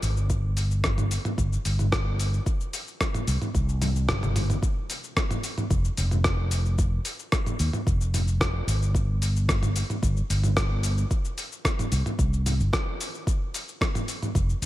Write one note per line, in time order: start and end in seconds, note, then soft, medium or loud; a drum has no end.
0.02 0.16 G#1 medium
0.02 open hi-hat medium
0.02 shaker medium
0.16 1.16 G1 medium
0.16 shaker soft
0.30 kick loud
0.30 shaker soft
0.57 open hi-hat medium
0.57 shaker medium
0.71 shaker soft
0.84 kick medium
0.84 cross-stick medium
0.84 shaker soft
0.98 mid tom medium
0.98 shaker soft
1.11 open hi-hat medium
1.11 shaker medium
1.25 mid tom medium
1.25 shaker soft
1.38 1.55 G1 medium
1.38 kick loud
1.38 shaker soft
1.53 shaker soft
1.65 2.38 G1 medium
1.65 open hi-hat medium
1.65 shaker medium
1.79 mid tom medium
1.79 shaker soft
1.92 kick loud
1.92 cross-stick medium
1.92 shaker soft
2.19 open hi-hat medium
2.19 shaker medium
2.34 shaker soft
2.46 kick loud
2.46 shaker soft
2.61 shaker soft
2.73 open hi-hat medium
2.73 shaker medium
2.88 shaker soft
3.01 kick medium
3.01 cross-stick medium
3.01 shaker soft
3.14 mid tom medium
3.14 shaker soft
3.27 3.36 C2 medium
3.27 open hi-hat medium
3.27 shaker medium
3.42 mid tom medium
3.42 shaker soft
3.55 4.08 C2 medium
3.55 kick loud
3.55 shaker soft
3.69 shaker soft
3.82 mid tom medium
3.82 open hi-hat medium
3.82 high tom medium
3.82 shaker medium
3.96 shaker soft
4.09 4.55 G1 medium
4.09 kick loud
4.09 cross-stick medium
4.09 mid tom medium
4.09 shaker soft
4.23 mid tom medium
4.23 shaker soft
4.36 mid tom medium
4.36 open hi-hat loud
4.36 shaker medium
4.50 mid tom medium
4.50 shaker soft
4.63 kick loud
4.63 shaker soft
4.90 open hi-hat medium
4.90 shaker medium
5.04 shaker soft
5.17 kick loud
5.17 cross-stick medium
5.17 shaker soft
5.31 mid tom medium
5.31 shaker soft
5.43 open hi-hat medium
5.43 shaker medium
5.58 mid tom medium
5.58 shaker soft
5.71 5.88 F1 loud
5.71 kick loud
5.71 shaker soft
5.85 shaker soft
5.97 6.98 F1 medium
5.97 open hi-hat loud
5.97 shaker medium
6.11 mid tom medium
6.11 shaker soft
6.24 kick loud
6.24 cross-stick medium
6.24 shaker soft
6.51 open hi-hat medium
6.51 shaker medium
6.66 shaker soft
6.78 kick loud
6.78 shaker soft
7.05 open hi-hat medium
7.05 shaker medium
7.19 shaker soft
7.32 kick loud
7.32 cross-stick loud
7.32 shaker soft
7.46 mid tom medium
7.46 shaker soft
7.59 7.68 D#2 medium
7.59 open hi-hat medium
7.59 shaker medium
7.73 mid tom medium
7.73 shaker soft
7.87 8.60 F1 medium
7.87 kick loud
7.87 shaker soft
8.01 shaker soft
8.14 mid tom medium
8.14 open hi-hat medium
8.14 shaker medium
8.28 shaker soft
8.41 kick loud
8.41 cross-stick loud
8.41 shaker soft
8.67 8.81 G#1 medium
8.67 open hi-hat medium
8.67 shaker medium
8.81 9.81 G1 medium
8.81 shaker soft
8.95 kick loud
8.95 shaker soft
9.22 open hi-hat medium
9.22 shaker medium
9.36 shaker soft
9.49 kick loud
9.49 cross-stick medium
9.49 shaker soft
9.63 mid tom medium
9.63 shaker soft
9.76 open hi-hat medium
9.76 shaker medium
9.90 mid tom medium
9.90 shaker soft
10.03 10.20 G1 loud
10.03 kick loud
10.03 shaker soft
10.17 shaker soft
10.30 11.03 G1 medium
10.30 open hi-hat medium
10.30 shaker medium
10.44 mid tom medium
10.44 shaker soft
10.57 kick loud
10.57 cross-stick loud
10.57 shaker soft
10.83 open hi-hat medium
10.83 shaker medium
10.98 shaker soft
11.11 kick loud
11.11 shaker soft
11.25 shaker soft
11.38 open hi-hat medium
11.38 shaker medium
11.52 shaker soft
11.65 kick loud
11.65 cross-stick medium
11.65 shaker soft
11.79 mid tom medium
11.79 shaker soft
11.92 12.01 C2 medium
11.92 open hi-hat medium
11.92 shaker medium
12.06 mid tom medium
12.06 shaker soft
12.19 12.60 C2 medium
12.19 kick loud
12.19 shaker soft
12.33 shaker soft
12.46 mid tom medium
12.46 open hi-hat medium
12.46 shaker medium
12.60 12.68 G1 medium
12.60 shaker soft
12.73 kick loud
12.73 cross-stick loud
12.73 shaker soft
13.01 open hi-hat medium
13.01 shaker medium
13.15 shaker soft
13.27 kick loud
13.27 shaker soft
13.54 open hi-hat medium
13.54 shaker medium
13.68 shaker soft
13.81 kick loud
13.81 cross-stick medium
13.81 shaker soft
13.95 mid tom medium
13.95 shaker soft
14.08 open hi-hat medium
14.08 shaker medium
14.22 mid tom medium
14.22 shaker soft
14.35 14.52 F1 loud
14.35 kick loud
14.35 shaker soft
14.49 shaker soft
14.62 14.66 F1 medium
14.62 open hi-hat medium
14.62 shaker medium